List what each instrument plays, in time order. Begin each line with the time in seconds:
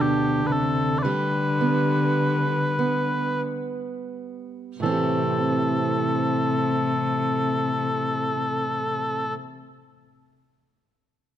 Already playing: steel-string acoustic guitar D2 D3 D4
0.01 cello B2, bagpipes G4
0.45 cello D3, bagpipes B4
0.50 cello C3, bagpipes A4
0.99 bagpipes D5
1.03 cello D3, steel-string acoustic guitar G3 G4, bagpipes B4
1.61 steel-string acoustic guitar B3
2.79 steel-string acoustic guitar B3
4.80 steel-string acoustic guitar A2 E3, cello C3, bagpipes A4
4.86 steel-string acoustic guitar A3 C4
4.92 steel-string acoustic guitar G4